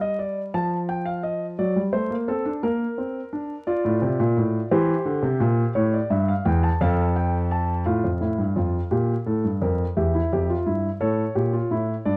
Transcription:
0.00 0.50 G3 medium
0.00 0.18 D#5 medium
0.19 0.40 D5 medium
0.54 1.55 F3 medium
0.54 0.75 A5 medium
0.89 1.05 G5 medium
1.05 1.22 F5 medium
1.23 1.45 D#5 medium
1.59 1.75 F#3 medium
1.59 1.80 D5 medium
1.76 1.93 G3 medium
1.93 2.10 A3 medium
1.93 2.14 C5 medium
2.10 2.27 A#3 medium
2.28 2.45 C4 medium
2.28 2.50 A4 medium
2.45 2.62 D4 medium
2.63 2.84 A#3 medium
2.63 3.64 A#4 medium
2.98 3.19 C4 medium
3.33 3.54 D4 medium
3.67 4.68 F4 medium
3.67 4.68 D5 medium
3.85 4.01 A2 medium
4.02 4.19 C3 medium
4.20 4.36 A#2 medium
4.37 4.58 A2 medium
4.71 4.93 E3 medium
4.71 6.77 G4 medium
4.71 5.72 C5 medium
5.05 5.23 D3 medium
5.23 5.40 C3 medium
5.40 5.62 A#2 medium
5.75 5.97 A2 medium
5.75 5.92 C#5 medium
5.94 6.10 D5 medium
6.10 6.32 G2 medium
6.10 6.27 E5 medium
6.28 6.45 F5 medium
6.45 6.67 E2 medium
6.45 6.63 G5 medium
6.63 6.80 A5 medium
6.81 7.83 F2 medium
6.81 7.83 A4 medium
6.81 7.03 F5 medium
7.16 7.38 G5 medium
7.51 7.73 A5 medium
7.86 8.03 A2 medium
7.86 8.08 F4 medium
7.86 9.93 F5 medium
8.04 8.21 F2 soft
8.21 8.38 A2 medium
8.21 8.43 E4 soft
8.38 8.56 G2 medium
8.56 8.78 F2 medium
8.56 8.78 F4 medium
8.91 9.13 A#2 medium
8.91 9.13 G4 medium
9.26 9.44 A2 medium
9.26 9.48 A4 medium
9.44 9.62 G2 soft
9.62 9.83 F2 medium
9.62 9.84 A#4 medium
9.97 10.18 E2 soft
9.97 10.14 G4 medium
9.97 10.98 E5 medium
10.14 10.31 E4 medium
10.33 10.54 F2 medium
10.33 10.49 G4 medium
10.50 10.66 F4 medium
10.66 10.88 G2 soft
10.66 10.88 E4 medium
11.01 11.23 A2 medium
11.01 11.23 A4 medium
11.01 12.03 C#5 medium
11.35 11.58 A#2 medium
11.35 11.53 G4 medium
11.53 11.70 F4 medium
11.71 11.93 A2 medium
11.71 11.93 E4 medium
12.05 12.17 G2 medium
12.05 12.17 D4 medium
12.05 12.17 D5 medium

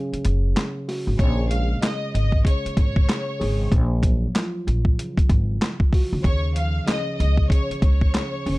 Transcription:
0.00 0.55 C#3 loud
0.00 0.88 F#3 medium
0.13 muted upright bass stroke soft
0.13 closed hi-hat medium
0.25 0.51 F#1 loud
0.25 closed hi-hat medium
0.55 1.18 C#3 medium
0.55 snare loud
0.55 clap loud
0.55 closed hi-hat medium
0.88 1.19 F#4 medium
0.88 snare soft
0.88 open hi-hat medium
1.07 1.18 G#1 medium
1.19 1.73 A#1 loud
1.19 1.81 C#3 medium
1.19 1.47 C#5 loud
1.19 1.48 C#6 medium
1.19 kick loud
1.19 closed hi-hat medium
1.49 3.40 G#3 medium
1.49 1.78 F5 medium
1.49 1.79 F6 medium
1.49 closed hi-hat medium
1.82 2.44 C#3 medium
1.82 2.11 D#5 medium
1.82 2.11 D#6 medium
1.82 snare loud
1.82 clap medium
1.82 closed hi-hat loud
2.14 2.41 G#1 medium
2.14 2.42 D#5 medium
2.14 2.43 D#6 medium
2.14 closed hi-hat medium
2.32 kick loud
2.45 3.08 C#3 medium
2.45 2.74 C#5 medium
2.45 2.74 C#6 medium
2.45 kick loud
2.45 closed hi-hat medium
2.65 muted upright bass stroke soft
2.65 closed hi-hat medium
2.77 3.04 G#1 medium
2.77 3.68 C#5 medium
2.77 3.69 C#6 medium
2.77 kick loud
2.77 closed hi-hat medium
2.96 kick loud
3.09 3.72 C#3 medium
3.09 snare loud
3.09 clap medium
3.09 closed hi-hat medium
3.40 3.67 G#1 loud
3.40 3.71 G#4 medium
3.40 open hi-hat medium
3.70 4.25 A#1 loud
3.70 5.60 F3 loud
3.70 kick loud
3.70 closed hi-hat medium
4.03 5.93 F#3 medium
4.03 kick loud
4.03 closed hi-hat medium
4.35 6.25 F4 medium
4.35 snare loud
4.35 clap medium
4.35 closed hi-hat loud
4.67 4.94 A#1 medium
4.67 closed hi-hat medium
4.85 kick loud
4.98 6.22 C#3 medium
4.98 closed hi-hat medium
5.18 muted upright bass stroke soft
5.18 kick medium
5.18 closed hi-hat medium
5.30 5.56 G#1 loud
5.30 kick loud
5.30 closed hi-hat medium
5.62 snare loud
5.62 clap loud
5.62 closed hi-hat medium
5.80 kick medium
5.93 6.25 F#4 medium
5.93 kick medium
5.93 open hi-hat medium
6.13 6.23 C#2 medium
6.24 6.78 D#2 loud
6.24 6.85 C#3 medium
6.24 6.52 C#5 loud
6.24 6.53 C#6 loud
6.24 kick loud
6.24 closed hi-hat medium
6.56 8.45 F3 medium
6.56 6.84 F5 medium
6.56 6.85 F6 medium
6.56 closed hi-hat medium
6.86 7.49 C#3 medium
6.86 7.15 D#5 medium
6.86 7.16 D#6 medium
6.86 snare loud
6.86 clap medium
6.86 closed hi-hat loud
7.16 7.46 C#2 medium
7.16 7.46 D#5 medium
7.16 7.46 D#6 medium
7.16 closed hi-hat medium
7.37 kick loud
7.50 8.13 C#3 medium
7.50 7.79 C#5 medium
7.50 7.79 C#6 medium
7.50 kick loud
7.50 closed hi-hat medium
7.70 muted upright bass stroke soft
7.70 closed hi-hat medium
7.81 8.09 C#2 loud
7.81 8.59 C#5 medium
7.81 8.59 C#6 medium
7.81 kick loud
7.81 closed hi-hat medium
8.01 kick loud
8.14 8.59 C#3 medium
8.14 snare loud
8.14 clap loud
8.14 closed hi-hat medium
8.46 8.59 F#1 loud
8.46 8.59 C#4 medium
8.46 open hi-hat medium

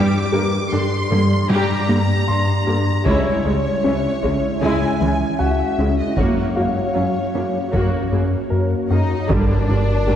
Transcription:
0.00 0.18 G2 medium
0.00 0.18 G3 medium
0.00 0.31 G3 medium
0.00 3.06 G3 medium
0.00 0.31 D4 soft
0.00 3.06 D4 medium
0.00 0.31 G4 medium
0.00 3.06 G4 medium
0.00 0.31 D5 soft
0.00 3.06 D5 medium
0.00 0.71 D6 medium
0.33 0.42 G2 medium
0.33 0.58 G2 medium
0.33 0.42 D3 soft
0.33 0.42 A#3 medium
0.33 0.56 G4 soft
0.33 2.63 A#4 soft
0.71 0.96 G2 medium
0.71 0.80 G2 medium
0.71 0.81 D3 soft
0.71 0.80 D4 medium
0.71 0.96 G4 medium
0.71 1.50 C6 medium
1.11 1.19 G2 medium
1.11 1.19 D3 soft
1.11 1.35 G3 medium
1.11 1.19 A#3 soft
1.11 1.35 D4 medium
1.49 1.73 G2 medium
1.49 1.58 G2 medium
1.49 1.86 G3 medium
1.49 1.74 G3 medium
1.49 1.86 G4 medium
1.49 3.03 A#5 loud
1.89 2.13 G2 medium
1.89 1.98 G2 medium
1.89 1.97 D3 medium
1.89 1.97 A#3 medium
1.89 2.12 A#3 soft
2.28 2.52 G2 medium
2.28 4.58 C6 medium
2.67 2.76 G2 medium
2.67 2.91 G2 soft
2.67 2.75 D3 medium
2.67 2.75 A#3 medium
2.67 2.90 G4 medium
3.05 3.30 C#2 medium
3.05 3.15 C#2 medium
3.05 3.29 C#3 medium
3.05 3.42 G#3 medium
3.05 6.18 G#3 medium
3.05 5.36 C#4 soft
3.05 9.29 C#4 medium
3.05 3.42 E4 medium
3.05 6.18 E4 medium
3.05 5.35 C#5 medium
3.05 4.59 C#5 loud
3.05 6.18 E5 medium
3.05 taiko medium
3.45 3.53 C#2 soft
3.45 3.69 C#2 soft
3.45 3.54 C#3 soft
3.45 3.54 G#3 soft
3.45 3.68 C#4 medium
3.84 4.08 C#2 soft
3.84 3.92 C#2 soft
3.84 3.93 E3 soft
3.84 4.08 C#4 medium
3.84 3.93 C#4 soft
4.23 4.32 C#2 soft
4.23 4.47 C#3 medium
4.23 4.31 C#3 soft
4.23 4.31 G#3 soft
4.23 4.47 G#3 medium
4.23 taiko soft
4.61 4.85 C#2 medium
4.61 4.70 C#2 medium
4.61 4.86 C#3 medium
4.61 4.98 G#3 medium
4.61 4.98 E4 medium
4.61 5.39 G#5 medium
5.01 5.24 C#2 soft
5.01 5.09 C#2 soft
5.01 5.09 C#3 soft
5.01 5.25 E3 soft
5.01 5.10 G#3 soft
5.39 5.63 C#2 medium
5.39 7.69 F#4 soft
5.39 5.99 E5 medium
5.39 7.69 F#5 soft
5.78 6.02 C#2 soft
5.78 5.87 C#2 soft
5.78 5.87 C#3 soft
5.78 5.87 G#3 soft
5.78 6.02 C#4 soft
5.99 6.18 D#5 medium
6.17 6.41 F#2 medium
6.17 6.27 F#2 soft
6.17 6.41 F#3 medium
6.17 6.54 A#3 soft
6.17 9.28 A#3 medium
6.17 6.54 F#4 soft
6.17 9.30 F#4 medium
6.17 8.51 C#5 medium
6.17 9.30 C#5 medium
6.17 taiko medium
6.55 6.80 F#2 medium
6.55 6.65 F#2 soft
6.55 6.65 C#3 soft
6.55 6.65 A#3 soft
6.55 6.80 F#4 medium
6.55 8.86 F5 soft
6.95 7.19 F#2 medium
6.95 7.04 F#2 soft
6.95 7.03 F#3 soft
6.95 7.03 C#4 soft
6.95 7.19 F#4 soft
7.34 7.43 F#2 soft
7.34 7.42 C#3 soft
7.34 7.58 F#3 medium
7.34 7.43 A#3 soft
7.34 7.58 C#4 soft
7.73 7.97 F#2 medium
7.73 7.82 F#2 soft
7.73 7.97 F#3 medium
7.73 8.10 A#3 soft
7.73 8.10 F#4 soft
7.73 taiko medium
8.12 8.36 F#2 medium
8.12 8.21 F#2 soft
8.12 8.20 C#3 soft
8.12 8.21 A#3 soft
8.12 8.36 A#3 soft
8.50 8.75 F#2 soft
8.50 9.25 A#4 soft
8.90 8.98 F#2 soft
8.90 9.14 F#2 medium
8.90 8.98 C#3 soft
8.90 8.98 A#3 soft
8.90 9.27 D#4 soft
8.90 9.14 F#4 medium
8.90 9.26 D#5 medium
9.28 9.38 G1 medium
9.28 10.16 G1 medium
9.28 9.53 G2 medium
9.28 9.37 G2 medium
9.28 9.66 D3 medium
9.28 10.16 G3 medium
9.28 9.66 G3 soft
9.28 9.53 G3 medium
9.28 10.16 A#3 medium
9.28 10.16 D4 medium
9.28 10.16 G4 medium
9.28 10.16 A#4 soft
9.28 10.16 A#4 medium
9.28 10.16 D5 medium
9.28 taiko medium
9.68 9.77 G1 soft
9.68 9.76 G2 soft
9.68 9.92 G3 medium
9.68 9.76 A#3 soft
9.68 9.76 D4 soft
9.68 9.92 D4 soft
10.07 10.16 G1 soft
10.07 10.16 G2 soft
10.07 10.15 G3 soft
10.07 10.15 A#3 soft
10.07 10.16 G4 soft

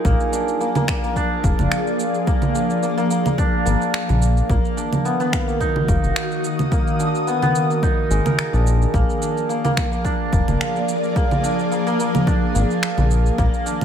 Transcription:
0.00 0.39 D#4 medium
0.00 2.30 F4 medium
0.00 2.52 G#4 medium
0.00 2.47 A#4 medium
0.05 0.14 A#1 loud
0.05 4.49 F3 medium
0.05 0.60 A#3 loud
0.05 kick loud
0.05 shaker soft
0.17 4.49 A#3 medium
0.17 6.06 G#4 medium
0.17 shaker soft
0.33 1.16 D4 medium
0.33 shaker medium
0.45 4.49 D5 medium
0.45 shaker soft
0.61 0.75 A#3 medium
0.61 shaker soft
0.75 0.88 A#3 loud
0.75 low conga medium
0.75 shaker soft
0.88 1.03 A#3 medium
0.88 finger snap medium
0.88 kick loud
0.88 shaker medium
1.04 1.44 A#3 medium
1.04 shaker soft
1.16 2.55 D4 loud
1.16 kick medium
1.16 shaker soft
1.44 1.53 F1 loud
1.44 2.27 A#3 medium
1.44 kick loud
1.44 shaker medium
1.59 1.67 F1 medium
1.59 low conga medium
1.59 shaker soft
1.72 finger snap medium
1.72 shaker soft
1.87 shaker soft
2.00 shaker medium
2.14 shaker soft
2.27 2.82 A#3 loud
2.27 kick loud
2.27 shaker soft
2.42 low conga medium
2.42 shaker soft
2.55 3.38 D4 medium
2.55 shaker medium
2.70 shaker soft
2.83 2.97 A#3 medium
2.83 shaker soft
2.98 3.10 A#3 loud
2.98 shaker soft
3.10 3.25 A#3 medium
3.10 shaker medium
3.25 3.65 A#3 medium
3.25 low conga medium
3.25 shaker soft
3.38 4.77 D4 loud
3.38 kick loud
3.38 shaker soft
3.66 3.76 G#1 medium
3.66 4.49 A#3 medium
3.66 shaker medium
3.82 shaker soft
3.94 finger snap medium
3.94 shaker soft
4.09 4.42 A#1 medium
4.09 low conga medium
4.09 shaker soft
4.22 shaker medium
4.37 shaker soft
4.49 4.59 A#1 loud
4.49 8.94 D#3 medium
4.49 5.11 A#3 loud
4.49 kick loud
4.49 shaker soft
4.62 8.94 F#4 medium
4.62 shaker soft
4.77 5.66 D4 medium
4.77 shaker medium
4.93 low conga medium
4.93 shaker soft
5.05 5.20 B3 medium
5.05 shaker soft
5.20 5.39 B3 loud
5.20 shaker soft
5.33 5.47 A#3 medium
5.33 finger snap medium
5.33 kick loud
5.33 shaker medium
5.48 5.88 A#3 medium
5.48 8.94 D#6 medium
5.48 shaker soft
5.60 7.06 D#4 loud
5.60 kick medium
5.60 shaker soft
5.76 low conga medium
5.88 5.98 F1 medium
5.88 6.71 A#3 medium
5.88 kick loud
5.88 shaker medium
6.03 6.11 F1 medium
6.03 shaker soft
6.16 finger snap medium
6.16 shaker soft
6.32 shaker soft
6.44 shaker medium
6.59 low conga medium
6.59 shaker soft
6.72 7.33 A#3 medium
6.72 kick loud
6.72 shaker soft
6.87 shaker soft
7.00 7.89 D4 medium
7.00 shaker medium
7.15 shaker soft
7.27 7.42 B3 medium
7.27 shaker soft
7.42 7.61 B3 loud
7.42 low conga medium
7.42 shaker soft
7.55 7.70 A#3 medium
7.55 shaker medium
7.70 8.94 A#3 medium
7.70 shaker soft
7.83 8.59 D#4 loud
7.83 kick loud
7.83 shaker soft
8.10 8.20 G#1 loud
8.10 8.99 G#3 medium
8.10 shaker medium
8.26 11.08 A#4 medium
8.26 low conga medium
8.26 shaker soft
8.39 finger snap medium
8.39 shaker soft
8.53 8.86 A#1 medium
8.53 9.21 D4 medium
8.53 shaker soft
8.67 shaker medium
8.82 shaker soft
8.94 9.03 A#1 loud
8.94 13.38 F3 loud
8.94 9.49 A#3 loud
8.94 kick loud
8.94 shaker soft
9.06 13.39 A#3 loud
9.06 shaker soft
9.22 10.04 D4 medium
9.22 shaker medium
9.37 13.85 G#4 medium
9.37 shaker soft
9.49 9.64 A#3 medium
9.49 shaker soft
9.64 9.77 A#3 loud
9.64 13.39 D5 medium
9.64 low conga medium
9.64 shaker soft
9.77 9.91 A#3 medium
9.77 finger snap medium
9.77 kick loud
9.77 shaker medium
9.92 10.32 A#3 medium
9.92 shaker soft
10.04 11.43 D4 loud
10.04 kick medium
10.04 shaker soft
10.33 10.42 F1 medium
10.33 11.15 A#3 medium
10.33 kick loud
10.33 shaker medium
10.48 10.56 F1 medium
10.48 low conga medium
10.48 shaker soft
10.61 finger snap medium
10.61 shaker soft
10.76 shaker soft
10.89 shaker medium
11.04 shaker soft
11.16 11.71 A#3 loud
11.16 kick loud
11.16 shaker soft
11.31 low conga medium
11.31 shaker soft
11.43 12.26 D4 medium
11.43 shaker medium
11.59 shaker soft
11.71 11.86 A#3 medium
11.71 shaker soft
11.87 11.99 A#3 loud
11.87 shaker soft
11.99 12.14 A#3 medium
11.99 shaker medium
12.14 12.55 A#3 medium
12.14 low conga medium
12.14 shaker soft
12.27 13.65 D4 loud
12.27 kick loud
12.27 shaker soft
12.55 12.64 G#1 loud
12.55 13.38 A#3 medium
12.55 shaker medium
12.71 shaker soft
12.83 finger snap medium
12.83 shaker soft
12.98 13.30 A#1 medium
12.98 low conga medium
12.98 shaker soft
13.11 shaker medium
13.26 shaker soft
13.38 13.48 A#1 loud
13.38 13.85 D#3 loud
13.38 13.85 A#3 loud
13.38 kick loud
13.38 shaker soft
13.54 shaker soft
13.60 13.85 D#6 loud
13.66 13.85 D4 medium
13.66 shaker medium
13.81 low conga medium

